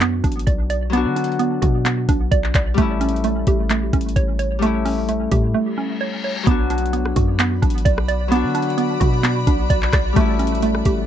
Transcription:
0.00 0.22 F#2 loud
0.00 0.88 F#3 medium
0.00 0.56 A3 medium
0.00 0.92 B3 medium
0.00 0.92 B3 loud
0.00 0.23 D4 medium
0.00 0.94 D4 medium
0.00 0.97 F#4 medium
0.00 1.16 F#4 medium
0.00 clap loud
0.00 closed hi-hat medium
0.24 0.46 A1 loud
0.24 1.15 D4 medium
0.24 kick medium
0.24 closed hi-hat medium
0.32 closed hi-hat medium
0.39 closed hi-hat medium
0.47 1.07 B1 loud
0.47 0.69 D5 medium
0.47 kick medium
0.47 closed hi-hat medium
0.70 2.09 D5 medium
0.70 closed hi-hat medium
0.90 2.83 F#3 medium
0.90 4.03 B3 medium
0.90 1.38 B3 medium
0.90 closed hi-hat medium
0.95 2.85 D4 medium
0.95 2.80 F#4 medium
1.06 1.60 D3 loud
1.16 2.08 D4 medium
1.16 closed hi-hat medium
1.24 closed hi-hat medium
1.32 closed hi-hat soft
1.39 1.84 B3 medium
1.39 closed hi-hat medium
1.62 2.07 B2 loud
1.62 2.78 F#4 medium
1.62 kick medium
1.62 closed hi-hat medium
1.85 2.77 B3 medium
1.85 clap loud
1.85 closed hi-hat medium
2.09 2.31 B1 loud
2.09 2.78 D4 medium
2.09 kick medium
2.09 closed hi-hat medium
2.31 2.54 B1 loud
2.31 2.54 D5 loud
2.31 kick medium
2.31 closed hi-hat medium
2.44 clap medium
2.55 2.77 B1 loud
2.55 2.78 D5 medium
2.55 kick loud
2.55 clap loud
2.55 closed hi-hat medium
2.74 3.44 A1 loud
2.74 4.58 G3 medium
2.74 4.61 A3 medium
2.74 3.23 A3 loud
2.74 kick loud
2.74 closed hi-hat medium
2.79 4.63 C#4 medium
2.79 4.66 E4 medium
3.01 3.92 C#4 medium
3.01 closed hi-hat medium
3.09 closed hi-hat medium
3.16 closed hi-hat soft
3.24 3.69 A3 medium
3.24 closed hi-hat medium
3.47 3.91 A1 loud
3.47 4.86 G4 medium
3.47 kick medium
3.47 closed hi-hat medium
3.70 4.61 A3 medium
3.70 clap loud
3.70 closed hi-hat medium
3.93 4.15 A1 loud
3.93 4.84 C#4 medium
3.93 kick medium
3.93 closed hi-hat medium
4.01 closed hi-hat medium
4.09 closed hi-hat medium
4.16 5.28 A1 loud
4.16 4.38 C#5 loud
4.16 kick medium
4.16 closed hi-hat medium
4.39 5.78 C#5 medium
4.39 closed hi-hat medium
4.59 6.52 G3 medium
4.59 7.94 A3 medium
4.59 5.08 A3 loud
4.59 closed hi-hat medium
4.64 6.54 C#4 medium
4.64 7.27 E4 medium
4.85 5.77 C#4 medium
4.85 open hi-hat medium
5.09 5.53 A3 medium
5.09 closed hi-hat medium
5.32 5.54 A2 loud
5.32 6.47 G4 medium
5.32 kick medium
5.32 closed hi-hat medium
5.54 6.47 A3 medium
5.54 reverse cymbal medium
5.78 6.47 C#4 medium
6.01 6.23 C#5 loud
6.24 6.47 C#5 medium
6.43 7.14 B1 loud
6.43 8.27 F#3 medium
6.43 8.30 B3 medium
6.43 6.92 B3 medium
6.43 10.13 F#4 medium
6.43 10.13 D5 medium
6.43 10.13 B5 medium
6.43 kick loud
6.43 closed hi-hat medium
6.48 8.33 D4 medium
6.48 8.35 F#4 medium
6.70 7.61 D4 medium
6.70 closed hi-hat medium
6.78 closed hi-hat medium
6.86 closed hi-hat soft
6.93 7.38 B3 medium
6.93 closed hi-hat medium
7.05 cross-stick medium
7.16 7.61 F#2 loud
7.16 8.55 F#4 medium
7.16 kick medium
7.16 closed hi-hat medium
7.39 8.30 B3 loud
7.39 clap loud
7.39 closed hi-hat medium
7.62 7.85 A1 loud
7.62 8.53 D4 medium
7.62 kick medium
7.62 closed hi-hat medium
7.70 closed hi-hat medium
7.78 closed hi-hat medium
7.85 8.45 B1 loud
7.85 8.07 D5 medium
7.85 kick medium
7.85 closed hi-hat medium
7.98 cross-stick loud
8.08 9.47 D5 medium
8.08 closed hi-hat medium
8.28 10.21 F#3 medium
8.28 11.06 B3 medium
8.28 8.76 B3 loud
8.28 closed hi-hat medium
8.33 10.24 D4 medium
8.33 10.19 F#4 medium
8.44 8.98 D3 loud
8.55 9.46 D4 medium
8.55 closed hi-hat medium
8.63 closed hi-hat medium
8.70 closed hi-hat soft
8.78 9.22 B3 medium
8.78 closed hi-hat medium
9.00 9.45 B2 loud
9.00 10.16 F#4 medium
9.00 kick medium
9.00 closed hi-hat medium
9.23 10.16 B3 medium
9.23 clap loud
9.23 closed hi-hat medium
9.47 9.69 B1 loud
9.47 10.16 D4 medium
9.47 kick medium
9.47 closed hi-hat medium
9.70 9.92 B1 loud
9.70 9.93 D5 loud
9.70 kick medium
9.70 closed hi-hat medium
9.82 clap medium
9.93 10.15 B1 loud
9.93 10.17 D5 medium
9.93 kick loud
9.93 cross-stick loud
9.93 clap loud
9.93 closed hi-hat medium
10.13 10.83 A1 loud
10.13 11.06 G3 medium
10.13 11.06 A3 medium
10.13 10.62 A3 loud
10.13 11.06 G4 medium
10.13 11.06 C#5 medium
10.13 11.06 A5 medium
10.13 kick loud
10.13 closed hi-hat medium
10.18 11.06 C#4 medium
10.18 11.06 E4 medium
10.39 11.06 C#4 medium
10.39 closed hi-hat medium
10.47 closed hi-hat medium
10.55 closed hi-hat soft
10.62 11.06 A3 medium
10.62 closed hi-hat medium
10.75 cross-stick medium
10.85 11.06 A1 loud
10.85 11.06 G4 medium
10.85 kick medium
10.85 closed hi-hat medium

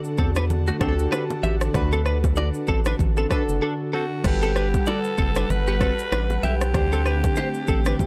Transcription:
0.00 0.79 D3 medium
0.00 4.21 D3 medium
0.00 0.80 D4 medium
0.00 4.21 D4 medium
0.00 0.81 F#4 medium
0.00 4.21 F#4 medium
0.00 0.88 A4 loud
0.00 4.21 A4 medium
0.00 4.26 D5 medium
0.04 shaker medium
0.17 0.71 E2 loud
0.17 0.30 C4 medium
0.17 0.30 A4 medium
0.17 kick medium
0.17 shaker medium
0.35 0.45 D4 medium
0.35 0.44 B4 medium
0.35 cross-stick loud
0.35 high bongo medium
0.35 shaker medium
0.50 low conga medium
0.50 shaker medium
0.67 0.76 A3 medium
0.67 0.76 F#4 medium
0.67 shaker medium
0.79 1.07 D2 medium
0.79 1.49 D3 medium
0.79 0.93 C4 medium
0.79 1.49 D4 medium
0.79 1.50 F#4 medium
0.79 0.89 G4 medium
0.79 0.92 A4 medium
0.79 kick loud
0.79 cross-stick loud
0.79 low bongo medium
0.79 shaker medium
0.88 1.53 A4 loud
0.99 shaker loud
1.12 1.24 D4 medium
1.12 1.23 B4 medium
1.12 cross-stick loud
1.12 high bongo medium
1.12 shaker medium
1.30 low bongo medium
1.30 shaker soft
1.43 1.69 A1 loud
1.43 1.55 G4 medium
1.43 1.54 E5 medium
1.43 low bongo soft
1.43 low conga medium
1.43 shaker soft
1.61 cross-stick loud
1.61 shaker medium
1.73 2.51 D2 loud
1.73 2.65 D3 medium
1.73 2.65 D4 medium
1.73 2.66 F#4 medium
1.73 2.66 B4 loud
1.73 kick loud
1.73 cross-stick medium
1.73 low conga medium
1.73 shaker medium
1.92 2.01 C4 medium
1.92 2.01 A4 medium
1.92 shaker medium
2.06 2.18 D4 medium
2.06 2.17 B4 medium
2.06 cross-stick medium
2.06 shaker medium
2.24 kick medium
2.24 low bongo medium
2.24 shaker medium
2.36 2.49 F#4 medium
2.36 2.48 D5 medium
2.36 high bongo medium
2.36 shaker medium
2.54 shaker medium
2.67 2.94 A1 medium
2.67 2.80 C4 medium
2.67 2.80 A4 medium
2.67 kick medium
2.67 shaker medium
2.85 2.95 D4 medium
2.85 2.95 B4 medium
2.85 cross-stick loud
2.85 high bongo medium
2.85 shaker loud
2.99 3.26 A1 medium
2.99 kick loud
2.99 low conga medium
2.99 shaker medium
3.17 3.26 C4 medium
3.17 3.26 A4 medium
3.17 shaker medium
3.29 3.99 D3 medium
3.29 3.99 D4 medium
3.29 3.42 D4 medium
3.29 4.00 F#4 medium
3.29 4.00 A4 loud
3.29 3.42 B4 medium
3.29 kick loud
3.29 cross-stick loud
3.29 low bongo medium
3.29 shaker medium
3.49 3.60 F#1 loud
3.49 shaker loud
3.62 3.74 D4 medium
3.62 3.73 A4 medium
3.93 4.05 C4 medium
3.93 4.27 F#4 medium
3.93 4.04 A4 medium
4.23 4.77 G1 loud
4.23 5.15 G3 medium
4.23 6.72 G3 medium
4.23 4.88 G4 medium
4.23 6.72 A4 medium
4.23 5.16 A4 medium
4.23 6.72 B4 medium
4.23 5.16 B4 medium
4.23 5.15 F#5 medium
4.23 6.72 F#5 medium
4.23 kick loud
4.23 cross-stick medium
4.23 crash loud
4.23 low conga medium
4.23 shaker medium
4.42 4.51 C4 medium
4.42 4.51 A4 medium
4.42 shaker medium
4.56 4.68 D4 medium
4.56 4.67 B4 medium
4.56 cross-stick medium
4.56 shaker medium
4.74 kick medium
4.74 low bongo medium
4.74 shaker medium
4.86 4.99 F#4 medium
4.86 5.52 A4 loud
4.86 4.98 D5 medium
4.86 high bongo medium
4.86 shaker medium
5.04 shaker medium
5.17 5.45 F#1 medium
5.17 5.30 C4 medium
5.17 5.30 A4 medium
5.17 kick medium
5.17 shaker medium
5.35 5.45 D4 medium
5.35 5.45 B4 medium
5.35 cross-stick loud
5.35 high bongo medium
5.35 shaker medium
5.49 5.91 G1 loud
5.49 6.44 B4 loud
5.49 low conga medium
5.49 shaker medium
5.67 5.76 B3 medium
5.67 5.76 G4 medium
5.67 shaker medium
5.79 6.49 G3 medium
5.79 5.93 C4 medium
5.79 6.49 F#4 medium
5.79 5.92 A4 medium
5.79 6.50 A4 medium
5.79 6.50 B4 medium
5.79 kick loud
5.79 cross-stick loud
5.79 low bongo medium
5.79 shaker medium
5.99 shaker loud
6.12 6.38 A1 loud
6.12 6.24 D4 medium
6.12 6.23 B4 medium
6.12 cross-stick loud
6.12 high bongo medium
6.12 shaker medium
6.30 low bongo medium
6.30 shaker soft
6.43 6.76 B1 medium
6.43 6.55 G4 medium
6.43 8.06 G4 loud
6.43 6.54 E5 medium
6.43 low bongo medium
6.43 low conga medium
6.43 shaker medium
6.61 cross-stick loud
6.61 shaker medium
6.73 7.27 D2 loud
6.73 7.65 D3 medium
6.73 8.06 D3 medium
6.73 8.06 A3 medium
6.73 8.06 C4 medium
6.73 7.65 D4 medium
6.73 8.06 G4 medium
6.73 7.66 G4 medium
6.73 7.66 C5 medium
6.73 kick loud
6.73 cross-stick medium
6.73 low conga medium
6.73 shaker medium
6.92 7.01 C4 medium
6.92 7.01 A4 medium
6.92 shaker medium
7.06 7.17 D4 medium
7.06 7.17 B4 medium
7.06 cross-stick medium
7.06 shaker medium
7.24 kick medium
7.24 low bongo medium
7.24 shaker medium
7.36 7.49 G4 medium
7.36 7.48 C5 medium
7.36 high bongo medium
7.36 shaker medium
7.54 shaker medium
7.67 7.95 A1 medium
7.67 7.80 C4 medium
7.67 7.79 A4 medium
7.67 kick medium
7.67 shaker medium
7.85 7.95 D4 medium
7.85 7.95 B4 medium
7.85 cross-stick loud
7.85 high bongo medium
7.85 shaker loud
7.99 8.06 D2 loud
7.99 kick loud
7.99 low conga medium
7.99 shaker medium

